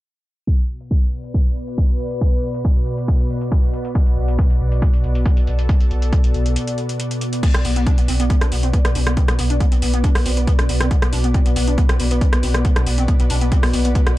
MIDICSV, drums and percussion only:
0, 0, Header, 1, 2, 480
1, 0, Start_track
1, 0, Key_signature, 2, "minor"
1, 0, Tempo, 434783
1, 523, Time_signature, 4, 2, 24, 8
1, 15656, End_track
2, 0, Start_track
2, 0, Title_t, "Drums"
2, 523, Note_on_c, 9, 36, 115
2, 523, Note_on_c, 9, 42, 77
2, 633, Note_off_c, 9, 36, 0
2, 633, Note_off_c, 9, 42, 0
2, 649, Note_on_c, 9, 42, 50
2, 759, Note_off_c, 9, 42, 0
2, 889, Note_on_c, 9, 42, 53
2, 999, Note_off_c, 9, 42, 0
2, 1003, Note_on_c, 9, 36, 114
2, 1003, Note_on_c, 9, 42, 75
2, 1113, Note_off_c, 9, 36, 0
2, 1113, Note_off_c, 9, 42, 0
2, 1129, Note_on_c, 9, 42, 52
2, 1239, Note_off_c, 9, 42, 0
2, 1369, Note_on_c, 9, 42, 52
2, 1480, Note_off_c, 9, 42, 0
2, 1483, Note_on_c, 9, 36, 111
2, 1484, Note_on_c, 9, 42, 79
2, 1593, Note_off_c, 9, 36, 0
2, 1594, Note_off_c, 9, 42, 0
2, 1609, Note_on_c, 9, 42, 54
2, 1720, Note_off_c, 9, 42, 0
2, 1724, Note_on_c, 9, 42, 35
2, 1834, Note_off_c, 9, 42, 0
2, 1849, Note_on_c, 9, 42, 52
2, 1959, Note_off_c, 9, 42, 0
2, 1963, Note_on_c, 9, 36, 115
2, 1963, Note_on_c, 9, 42, 80
2, 2073, Note_off_c, 9, 36, 0
2, 2074, Note_off_c, 9, 42, 0
2, 2089, Note_on_c, 9, 42, 53
2, 2199, Note_off_c, 9, 42, 0
2, 2204, Note_on_c, 9, 42, 53
2, 2314, Note_off_c, 9, 42, 0
2, 2329, Note_on_c, 9, 42, 64
2, 2440, Note_off_c, 9, 42, 0
2, 2443, Note_on_c, 9, 36, 118
2, 2443, Note_on_c, 9, 42, 80
2, 2553, Note_off_c, 9, 36, 0
2, 2554, Note_off_c, 9, 42, 0
2, 2569, Note_on_c, 9, 42, 51
2, 2679, Note_off_c, 9, 42, 0
2, 2683, Note_on_c, 9, 42, 37
2, 2793, Note_off_c, 9, 42, 0
2, 2809, Note_on_c, 9, 42, 55
2, 2919, Note_off_c, 9, 42, 0
2, 2923, Note_on_c, 9, 36, 117
2, 2923, Note_on_c, 9, 42, 81
2, 3033, Note_off_c, 9, 36, 0
2, 3033, Note_off_c, 9, 42, 0
2, 3048, Note_on_c, 9, 42, 53
2, 3159, Note_off_c, 9, 42, 0
2, 3163, Note_on_c, 9, 42, 38
2, 3273, Note_off_c, 9, 42, 0
2, 3288, Note_on_c, 9, 42, 54
2, 3399, Note_off_c, 9, 42, 0
2, 3403, Note_on_c, 9, 36, 120
2, 3403, Note_on_c, 9, 42, 80
2, 3513, Note_off_c, 9, 36, 0
2, 3513, Note_off_c, 9, 42, 0
2, 3529, Note_on_c, 9, 42, 56
2, 3639, Note_off_c, 9, 42, 0
2, 3643, Note_on_c, 9, 42, 36
2, 3753, Note_off_c, 9, 42, 0
2, 3768, Note_on_c, 9, 42, 53
2, 3879, Note_off_c, 9, 42, 0
2, 3883, Note_on_c, 9, 36, 118
2, 3883, Note_on_c, 9, 42, 79
2, 3993, Note_off_c, 9, 36, 0
2, 3993, Note_off_c, 9, 42, 0
2, 4008, Note_on_c, 9, 42, 53
2, 4119, Note_off_c, 9, 42, 0
2, 4123, Note_on_c, 9, 42, 54
2, 4233, Note_off_c, 9, 42, 0
2, 4248, Note_on_c, 9, 42, 63
2, 4358, Note_off_c, 9, 42, 0
2, 4362, Note_on_c, 9, 36, 121
2, 4363, Note_on_c, 9, 42, 78
2, 4473, Note_off_c, 9, 36, 0
2, 4473, Note_off_c, 9, 42, 0
2, 4489, Note_on_c, 9, 42, 51
2, 4599, Note_off_c, 9, 42, 0
2, 4729, Note_on_c, 9, 42, 56
2, 4839, Note_off_c, 9, 42, 0
2, 4842, Note_on_c, 9, 36, 118
2, 4843, Note_on_c, 9, 42, 77
2, 4953, Note_off_c, 9, 36, 0
2, 4953, Note_off_c, 9, 42, 0
2, 4969, Note_on_c, 9, 42, 54
2, 5079, Note_off_c, 9, 42, 0
2, 5208, Note_on_c, 9, 42, 52
2, 5319, Note_off_c, 9, 42, 0
2, 5322, Note_on_c, 9, 36, 120
2, 5322, Note_on_c, 9, 42, 79
2, 5433, Note_off_c, 9, 36, 0
2, 5433, Note_off_c, 9, 42, 0
2, 5449, Note_on_c, 9, 42, 53
2, 5559, Note_off_c, 9, 42, 0
2, 5563, Note_on_c, 9, 42, 37
2, 5673, Note_off_c, 9, 42, 0
2, 5688, Note_on_c, 9, 42, 51
2, 5799, Note_off_c, 9, 42, 0
2, 5802, Note_on_c, 9, 36, 121
2, 5802, Note_on_c, 9, 42, 78
2, 5913, Note_off_c, 9, 36, 0
2, 5913, Note_off_c, 9, 42, 0
2, 5928, Note_on_c, 9, 42, 52
2, 6039, Note_off_c, 9, 42, 0
2, 6043, Note_on_c, 9, 42, 53
2, 6153, Note_off_c, 9, 42, 0
2, 6168, Note_on_c, 9, 42, 64
2, 6279, Note_off_c, 9, 42, 0
2, 6282, Note_on_c, 9, 42, 76
2, 6283, Note_on_c, 9, 36, 123
2, 6393, Note_off_c, 9, 36, 0
2, 6393, Note_off_c, 9, 42, 0
2, 6408, Note_on_c, 9, 42, 49
2, 6519, Note_off_c, 9, 42, 0
2, 6523, Note_on_c, 9, 42, 36
2, 6633, Note_off_c, 9, 42, 0
2, 6648, Note_on_c, 9, 42, 53
2, 6759, Note_off_c, 9, 42, 0
2, 6763, Note_on_c, 9, 36, 122
2, 6763, Note_on_c, 9, 42, 74
2, 6873, Note_off_c, 9, 36, 0
2, 6873, Note_off_c, 9, 42, 0
2, 6889, Note_on_c, 9, 42, 51
2, 6999, Note_off_c, 9, 42, 0
2, 7003, Note_on_c, 9, 42, 37
2, 7114, Note_off_c, 9, 42, 0
2, 7129, Note_on_c, 9, 42, 52
2, 7239, Note_off_c, 9, 42, 0
2, 7243, Note_on_c, 9, 42, 78
2, 7354, Note_off_c, 9, 42, 0
2, 7369, Note_on_c, 9, 42, 52
2, 7479, Note_off_c, 9, 42, 0
2, 7483, Note_on_c, 9, 42, 35
2, 7594, Note_off_c, 9, 42, 0
2, 7609, Note_on_c, 9, 42, 48
2, 7719, Note_off_c, 9, 42, 0
2, 7723, Note_on_c, 9, 42, 77
2, 7834, Note_off_c, 9, 42, 0
2, 7849, Note_on_c, 9, 42, 52
2, 7960, Note_off_c, 9, 42, 0
2, 7963, Note_on_c, 9, 42, 53
2, 8074, Note_off_c, 9, 42, 0
2, 8089, Note_on_c, 9, 42, 59
2, 8200, Note_off_c, 9, 42, 0
2, 8203, Note_on_c, 9, 36, 118
2, 8204, Note_on_c, 9, 42, 69
2, 8204, Note_on_c, 9, 49, 94
2, 8313, Note_off_c, 9, 36, 0
2, 8314, Note_off_c, 9, 42, 0
2, 8314, Note_off_c, 9, 49, 0
2, 8329, Note_on_c, 9, 37, 85
2, 8329, Note_on_c, 9, 42, 64
2, 8440, Note_off_c, 9, 37, 0
2, 8440, Note_off_c, 9, 42, 0
2, 8443, Note_on_c, 9, 46, 105
2, 8554, Note_off_c, 9, 46, 0
2, 8569, Note_on_c, 9, 42, 70
2, 8679, Note_off_c, 9, 42, 0
2, 8683, Note_on_c, 9, 36, 113
2, 8684, Note_on_c, 9, 42, 67
2, 8793, Note_off_c, 9, 36, 0
2, 8794, Note_off_c, 9, 42, 0
2, 8809, Note_on_c, 9, 42, 68
2, 8920, Note_off_c, 9, 42, 0
2, 8924, Note_on_c, 9, 46, 105
2, 9034, Note_off_c, 9, 46, 0
2, 9050, Note_on_c, 9, 42, 68
2, 9160, Note_off_c, 9, 42, 0
2, 9163, Note_on_c, 9, 36, 119
2, 9164, Note_on_c, 9, 42, 69
2, 9273, Note_off_c, 9, 36, 0
2, 9274, Note_off_c, 9, 42, 0
2, 9289, Note_on_c, 9, 37, 80
2, 9289, Note_on_c, 9, 42, 71
2, 9400, Note_off_c, 9, 37, 0
2, 9400, Note_off_c, 9, 42, 0
2, 9404, Note_on_c, 9, 46, 104
2, 9514, Note_off_c, 9, 46, 0
2, 9529, Note_on_c, 9, 42, 66
2, 9640, Note_off_c, 9, 42, 0
2, 9643, Note_on_c, 9, 36, 116
2, 9644, Note_on_c, 9, 42, 69
2, 9753, Note_off_c, 9, 36, 0
2, 9754, Note_off_c, 9, 42, 0
2, 9769, Note_on_c, 9, 37, 79
2, 9769, Note_on_c, 9, 42, 68
2, 9880, Note_off_c, 9, 37, 0
2, 9880, Note_off_c, 9, 42, 0
2, 9884, Note_on_c, 9, 46, 102
2, 9994, Note_off_c, 9, 46, 0
2, 10010, Note_on_c, 9, 37, 88
2, 10010, Note_on_c, 9, 42, 70
2, 10120, Note_off_c, 9, 37, 0
2, 10120, Note_off_c, 9, 42, 0
2, 10123, Note_on_c, 9, 36, 120
2, 10123, Note_on_c, 9, 42, 69
2, 10233, Note_off_c, 9, 36, 0
2, 10234, Note_off_c, 9, 42, 0
2, 10249, Note_on_c, 9, 37, 83
2, 10249, Note_on_c, 9, 42, 65
2, 10359, Note_off_c, 9, 37, 0
2, 10359, Note_off_c, 9, 42, 0
2, 10363, Note_on_c, 9, 46, 108
2, 10474, Note_off_c, 9, 46, 0
2, 10489, Note_on_c, 9, 42, 70
2, 10600, Note_off_c, 9, 42, 0
2, 10603, Note_on_c, 9, 36, 123
2, 10603, Note_on_c, 9, 42, 69
2, 10713, Note_off_c, 9, 36, 0
2, 10714, Note_off_c, 9, 42, 0
2, 10729, Note_on_c, 9, 42, 69
2, 10839, Note_off_c, 9, 42, 0
2, 10843, Note_on_c, 9, 46, 110
2, 10954, Note_off_c, 9, 46, 0
2, 10969, Note_on_c, 9, 42, 68
2, 11080, Note_off_c, 9, 42, 0
2, 11083, Note_on_c, 9, 36, 120
2, 11083, Note_on_c, 9, 42, 69
2, 11194, Note_off_c, 9, 36, 0
2, 11194, Note_off_c, 9, 42, 0
2, 11209, Note_on_c, 9, 37, 81
2, 11209, Note_on_c, 9, 46, 66
2, 11319, Note_off_c, 9, 37, 0
2, 11319, Note_off_c, 9, 46, 0
2, 11323, Note_on_c, 9, 46, 107
2, 11434, Note_off_c, 9, 46, 0
2, 11449, Note_on_c, 9, 42, 68
2, 11559, Note_off_c, 9, 42, 0
2, 11563, Note_on_c, 9, 36, 122
2, 11564, Note_on_c, 9, 42, 68
2, 11673, Note_off_c, 9, 36, 0
2, 11674, Note_off_c, 9, 42, 0
2, 11689, Note_on_c, 9, 37, 78
2, 11689, Note_on_c, 9, 42, 69
2, 11800, Note_off_c, 9, 37, 0
2, 11800, Note_off_c, 9, 42, 0
2, 11804, Note_on_c, 9, 46, 108
2, 11914, Note_off_c, 9, 46, 0
2, 11929, Note_on_c, 9, 37, 88
2, 11929, Note_on_c, 9, 42, 69
2, 12039, Note_off_c, 9, 37, 0
2, 12039, Note_off_c, 9, 42, 0
2, 12043, Note_on_c, 9, 36, 125
2, 12044, Note_on_c, 9, 42, 68
2, 12153, Note_off_c, 9, 36, 0
2, 12154, Note_off_c, 9, 42, 0
2, 12169, Note_on_c, 9, 37, 88
2, 12169, Note_on_c, 9, 42, 66
2, 12280, Note_off_c, 9, 37, 0
2, 12280, Note_off_c, 9, 42, 0
2, 12283, Note_on_c, 9, 46, 115
2, 12394, Note_off_c, 9, 46, 0
2, 12409, Note_on_c, 9, 42, 69
2, 12520, Note_off_c, 9, 42, 0
2, 12523, Note_on_c, 9, 36, 124
2, 12523, Note_on_c, 9, 42, 65
2, 12633, Note_off_c, 9, 36, 0
2, 12634, Note_off_c, 9, 42, 0
2, 12649, Note_on_c, 9, 42, 68
2, 12759, Note_off_c, 9, 42, 0
2, 12763, Note_on_c, 9, 46, 115
2, 12874, Note_off_c, 9, 46, 0
2, 12889, Note_on_c, 9, 42, 68
2, 12999, Note_off_c, 9, 42, 0
2, 13003, Note_on_c, 9, 36, 124
2, 13003, Note_on_c, 9, 42, 67
2, 13113, Note_off_c, 9, 36, 0
2, 13114, Note_off_c, 9, 42, 0
2, 13129, Note_on_c, 9, 37, 85
2, 13129, Note_on_c, 9, 42, 68
2, 13239, Note_off_c, 9, 37, 0
2, 13239, Note_off_c, 9, 42, 0
2, 13244, Note_on_c, 9, 46, 108
2, 13354, Note_off_c, 9, 46, 0
2, 13369, Note_on_c, 9, 42, 65
2, 13479, Note_off_c, 9, 42, 0
2, 13483, Note_on_c, 9, 36, 125
2, 13483, Note_on_c, 9, 42, 68
2, 13593, Note_off_c, 9, 36, 0
2, 13594, Note_off_c, 9, 42, 0
2, 13609, Note_on_c, 9, 37, 79
2, 13609, Note_on_c, 9, 42, 67
2, 13719, Note_off_c, 9, 37, 0
2, 13719, Note_off_c, 9, 42, 0
2, 13723, Note_on_c, 9, 46, 112
2, 13834, Note_off_c, 9, 46, 0
2, 13849, Note_on_c, 9, 37, 88
2, 13849, Note_on_c, 9, 42, 69
2, 13959, Note_off_c, 9, 37, 0
2, 13959, Note_off_c, 9, 42, 0
2, 13963, Note_on_c, 9, 36, 123
2, 13963, Note_on_c, 9, 42, 65
2, 14073, Note_off_c, 9, 36, 0
2, 14074, Note_off_c, 9, 42, 0
2, 14089, Note_on_c, 9, 37, 87
2, 14089, Note_on_c, 9, 42, 63
2, 14199, Note_off_c, 9, 37, 0
2, 14199, Note_off_c, 9, 42, 0
2, 14203, Note_on_c, 9, 46, 113
2, 14314, Note_off_c, 9, 46, 0
2, 14329, Note_on_c, 9, 42, 69
2, 14439, Note_off_c, 9, 42, 0
2, 14443, Note_on_c, 9, 36, 124
2, 14443, Note_on_c, 9, 42, 62
2, 14553, Note_off_c, 9, 36, 0
2, 14553, Note_off_c, 9, 42, 0
2, 14569, Note_on_c, 9, 42, 65
2, 14679, Note_off_c, 9, 42, 0
2, 14683, Note_on_c, 9, 46, 113
2, 14793, Note_off_c, 9, 46, 0
2, 14809, Note_on_c, 9, 42, 64
2, 14919, Note_off_c, 9, 42, 0
2, 14923, Note_on_c, 9, 36, 121
2, 14923, Note_on_c, 9, 42, 65
2, 15033, Note_off_c, 9, 36, 0
2, 15033, Note_off_c, 9, 42, 0
2, 15049, Note_on_c, 9, 37, 86
2, 15049, Note_on_c, 9, 46, 65
2, 15159, Note_off_c, 9, 37, 0
2, 15159, Note_off_c, 9, 46, 0
2, 15163, Note_on_c, 9, 46, 105
2, 15273, Note_off_c, 9, 46, 0
2, 15289, Note_on_c, 9, 42, 62
2, 15400, Note_off_c, 9, 42, 0
2, 15403, Note_on_c, 9, 36, 119
2, 15404, Note_on_c, 9, 42, 62
2, 15513, Note_off_c, 9, 36, 0
2, 15514, Note_off_c, 9, 42, 0
2, 15529, Note_on_c, 9, 37, 85
2, 15529, Note_on_c, 9, 42, 65
2, 15639, Note_off_c, 9, 37, 0
2, 15639, Note_off_c, 9, 42, 0
2, 15656, End_track
0, 0, End_of_file